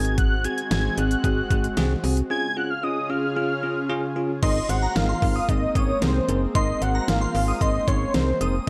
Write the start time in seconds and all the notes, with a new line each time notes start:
Already playing: G#1 G#3 C4 F#4 G#4 G#6
0.05 closed hi-hat
0.18 F#6, kick, closed hi-hat
0.44 C4 F#4 G#4 G#6, closed hi-hat
0.58 closed hi-hat
0.71 G#1 C4 F#4 G#4 G#6, snare, closed hi-hat
0.98 G#1 C4 F#4 G#4 F#6, closed hi-hat
1.11 closed hi-hat
1.24 G#1 C4 F#4 G#4, kick, closed hi-hat
1.50 G#1 C4 F#4 G#4, kick, closed hi-hat
1.64 closed hi-hat
1.77 C2 C4 F#4 G#4, snare, closed hi-hat
2.04 C2 C4 F#4 G#4, open hi-hat
2.17 closed hi-hat
2.30 C#3 C#4 F4 G#4 G#6
2.57 C#4 F4 G#4 F#6
2.70 F6
2.83 C#4 F4 G#4 D#6
3.10 C#4 F4 G#4 F6
3.36 C#4 F4 G#4
3.63 C#4 F4 G#4
3.90 C#4 F4 G#4
4.16 C#4 F4 G#4
4.43 G#1 G#3 A#3 C4 D#4 G#4 A#4 D#5 C6, kick, closed hi-hat, crash
4.69 G#1 C4 D#4 G#4 C5 F#5, closed hi-hat
4.82 A#5
4.96 G#1 C4 D#4 G#4 A#4 F5, snare, closed hi-hat
5.09 C6
5.22 G#1 C4 D#4 G#4 A#4, kick, open hi-hat
5.36 D#6
5.49 G#1 C4 D#4 G#4 A#4 D#5, kick, closed hi-hat
5.75 G#1 C4 D#4 G#4 A#4 C#5 D#6, kick, closed hi-hat
6.02 C2 C4 D#4 G#4 A#4 C5, snare, closed hi-hat
6.29 F#1 C4 D#4 G#4 A#4, closed hi-hat
6.55 G#1 C4 D#4 G#4 A#4 D#5 C6, kick, closed hi-hat
6.82 G#1 C4 D#4 G#4 A#4 F#5, closed hi-hat
6.95 A#5
7.08 G#1 C4 D#4 G#4 A#4 F5, snare, closed hi-hat
7.21 C6
7.35 G#1 C4 D#4 G#4 A#4, open hi-hat
7.48 D#6
7.61 G#1 C4 D#4 G#4 A#4 D#5 C6, kick, closed hi-hat
7.88 G#1 C4 D#4 G#4 A#4 C#5 C6, kick, closed hi-hat
8.14 C2 C4 D#4 G#4 A#4 C5, snare, closed hi-hat
8.41 F1 C4 D#4 G#4 A#4 D#6, closed hi-hat